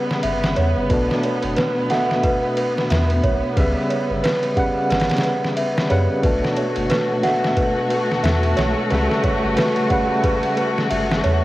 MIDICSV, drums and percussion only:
0, 0, Header, 1, 2, 480
1, 0, Start_track
1, 0, Key_signature, 2, "minor"
1, 0, Tempo, 666667
1, 651, Time_signature, 4, 2, 24, 8
1, 8240, End_track
2, 0, Start_track
2, 0, Title_t, "Drums"
2, 78, Note_on_c, 9, 38, 54
2, 150, Note_off_c, 9, 38, 0
2, 165, Note_on_c, 9, 51, 88
2, 237, Note_off_c, 9, 51, 0
2, 315, Note_on_c, 9, 38, 114
2, 387, Note_off_c, 9, 38, 0
2, 406, Note_on_c, 9, 51, 66
2, 478, Note_off_c, 9, 51, 0
2, 647, Note_on_c, 9, 36, 119
2, 647, Note_on_c, 9, 51, 93
2, 719, Note_off_c, 9, 36, 0
2, 719, Note_off_c, 9, 51, 0
2, 799, Note_on_c, 9, 38, 47
2, 871, Note_off_c, 9, 38, 0
2, 888, Note_on_c, 9, 51, 69
2, 960, Note_off_c, 9, 51, 0
2, 1025, Note_on_c, 9, 51, 44
2, 1097, Note_off_c, 9, 51, 0
2, 1126, Note_on_c, 9, 51, 85
2, 1138, Note_on_c, 9, 38, 113
2, 1198, Note_off_c, 9, 51, 0
2, 1210, Note_off_c, 9, 38, 0
2, 1366, Note_on_c, 9, 51, 66
2, 1379, Note_on_c, 9, 38, 39
2, 1438, Note_off_c, 9, 51, 0
2, 1451, Note_off_c, 9, 38, 0
2, 1519, Note_on_c, 9, 38, 49
2, 1591, Note_off_c, 9, 38, 0
2, 1608, Note_on_c, 9, 36, 115
2, 1608, Note_on_c, 9, 51, 93
2, 1680, Note_off_c, 9, 36, 0
2, 1680, Note_off_c, 9, 51, 0
2, 1849, Note_on_c, 9, 51, 74
2, 1921, Note_off_c, 9, 51, 0
2, 2002, Note_on_c, 9, 38, 45
2, 2074, Note_off_c, 9, 38, 0
2, 2090, Note_on_c, 9, 51, 93
2, 2102, Note_on_c, 9, 38, 116
2, 2162, Note_off_c, 9, 51, 0
2, 2174, Note_off_c, 9, 38, 0
2, 2230, Note_on_c, 9, 51, 43
2, 2302, Note_off_c, 9, 51, 0
2, 2329, Note_on_c, 9, 36, 93
2, 2330, Note_on_c, 9, 51, 66
2, 2401, Note_off_c, 9, 36, 0
2, 2402, Note_off_c, 9, 51, 0
2, 2569, Note_on_c, 9, 36, 117
2, 2570, Note_on_c, 9, 51, 92
2, 2641, Note_off_c, 9, 36, 0
2, 2642, Note_off_c, 9, 51, 0
2, 2811, Note_on_c, 9, 51, 70
2, 2883, Note_off_c, 9, 51, 0
2, 3052, Note_on_c, 9, 51, 83
2, 3064, Note_on_c, 9, 38, 111
2, 3124, Note_off_c, 9, 51, 0
2, 3136, Note_off_c, 9, 38, 0
2, 3190, Note_on_c, 9, 51, 44
2, 3262, Note_off_c, 9, 51, 0
2, 3289, Note_on_c, 9, 36, 97
2, 3291, Note_on_c, 9, 51, 66
2, 3361, Note_off_c, 9, 36, 0
2, 3363, Note_off_c, 9, 51, 0
2, 3531, Note_on_c, 9, 51, 69
2, 3544, Note_on_c, 9, 38, 95
2, 3598, Note_off_c, 9, 51, 0
2, 3598, Note_on_c, 9, 51, 70
2, 3610, Note_off_c, 9, 38, 0
2, 3610, Note_on_c, 9, 38, 92
2, 3668, Note_off_c, 9, 51, 0
2, 3668, Note_on_c, 9, 51, 64
2, 3680, Note_off_c, 9, 38, 0
2, 3680, Note_on_c, 9, 38, 85
2, 3719, Note_off_c, 9, 51, 0
2, 3719, Note_on_c, 9, 51, 65
2, 3731, Note_off_c, 9, 38, 0
2, 3731, Note_on_c, 9, 38, 84
2, 3770, Note_off_c, 9, 51, 0
2, 3770, Note_on_c, 9, 51, 70
2, 3803, Note_off_c, 9, 38, 0
2, 3842, Note_off_c, 9, 51, 0
2, 3920, Note_on_c, 9, 38, 53
2, 3992, Note_off_c, 9, 38, 0
2, 4009, Note_on_c, 9, 51, 92
2, 4081, Note_off_c, 9, 51, 0
2, 4160, Note_on_c, 9, 38, 117
2, 4232, Note_off_c, 9, 38, 0
2, 4249, Note_on_c, 9, 51, 69
2, 4321, Note_off_c, 9, 51, 0
2, 4488, Note_on_c, 9, 36, 115
2, 4488, Note_on_c, 9, 51, 85
2, 4560, Note_off_c, 9, 36, 0
2, 4560, Note_off_c, 9, 51, 0
2, 4640, Note_on_c, 9, 38, 51
2, 4712, Note_off_c, 9, 38, 0
2, 4727, Note_on_c, 9, 51, 73
2, 4799, Note_off_c, 9, 51, 0
2, 4865, Note_on_c, 9, 51, 45
2, 4937, Note_off_c, 9, 51, 0
2, 4966, Note_on_c, 9, 51, 89
2, 4978, Note_on_c, 9, 38, 112
2, 5038, Note_off_c, 9, 51, 0
2, 5050, Note_off_c, 9, 38, 0
2, 5207, Note_on_c, 9, 51, 69
2, 5219, Note_on_c, 9, 38, 38
2, 5279, Note_off_c, 9, 51, 0
2, 5291, Note_off_c, 9, 38, 0
2, 5359, Note_on_c, 9, 38, 51
2, 5431, Note_off_c, 9, 38, 0
2, 5448, Note_on_c, 9, 36, 113
2, 5448, Note_on_c, 9, 51, 86
2, 5520, Note_off_c, 9, 36, 0
2, 5520, Note_off_c, 9, 51, 0
2, 5690, Note_on_c, 9, 51, 72
2, 5762, Note_off_c, 9, 51, 0
2, 5843, Note_on_c, 9, 38, 44
2, 5915, Note_off_c, 9, 38, 0
2, 5930, Note_on_c, 9, 51, 96
2, 5943, Note_on_c, 9, 38, 126
2, 6002, Note_off_c, 9, 51, 0
2, 6015, Note_off_c, 9, 38, 0
2, 6071, Note_on_c, 9, 51, 44
2, 6143, Note_off_c, 9, 51, 0
2, 6170, Note_on_c, 9, 51, 80
2, 6182, Note_on_c, 9, 38, 105
2, 6242, Note_off_c, 9, 51, 0
2, 6254, Note_off_c, 9, 38, 0
2, 6410, Note_on_c, 9, 51, 64
2, 6422, Note_on_c, 9, 38, 35
2, 6482, Note_off_c, 9, 51, 0
2, 6494, Note_off_c, 9, 38, 0
2, 6560, Note_on_c, 9, 38, 45
2, 6632, Note_off_c, 9, 38, 0
2, 6649, Note_on_c, 9, 36, 102
2, 6649, Note_on_c, 9, 51, 76
2, 6721, Note_off_c, 9, 36, 0
2, 6721, Note_off_c, 9, 51, 0
2, 6888, Note_on_c, 9, 51, 89
2, 6901, Note_on_c, 9, 38, 111
2, 6960, Note_off_c, 9, 51, 0
2, 6973, Note_off_c, 9, 38, 0
2, 7026, Note_on_c, 9, 51, 44
2, 7098, Note_off_c, 9, 51, 0
2, 7128, Note_on_c, 9, 51, 69
2, 7129, Note_on_c, 9, 36, 97
2, 7200, Note_off_c, 9, 51, 0
2, 7201, Note_off_c, 9, 36, 0
2, 7369, Note_on_c, 9, 36, 116
2, 7369, Note_on_c, 9, 51, 98
2, 7441, Note_off_c, 9, 36, 0
2, 7441, Note_off_c, 9, 51, 0
2, 7509, Note_on_c, 9, 51, 44
2, 7581, Note_off_c, 9, 51, 0
2, 7611, Note_on_c, 9, 51, 68
2, 7683, Note_off_c, 9, 51, 0
2, 7763, Note_on_c, 9, 38, 52
2, 7835, Note_off_c, 9, 38, 0
2, 7853, Note_on_c, 9, 51, 96
2, 7925, Note_off_c, 9, 51, 0
2, 8003, Note_on_c, 9, 38, 121
2, 8075, Note_off_c, 9, 38, 0
2, 8092, Note_on_c, 9, 51, 70
2, 8164, Note_off_c, 9, 51, 0
2, 8240, End_track
0, 0, End_of_file